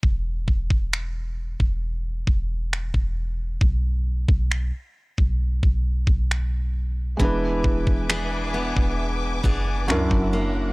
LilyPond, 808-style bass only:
\new Staff \with { instrumentName = "808-style bass" } { \clef bass \time 4/4 \key e \dorian \tempo 4 = 67 e,,8 e,,4~ e,,16 e,,8. e,,8. e,,8. | b,,8. b,,8 r8 b,,8 b,,8 b,,4~ b,,16 | e,,8 e,,4~ e,,16 e,,8. fis,,8 cis,16 fis,,8. | }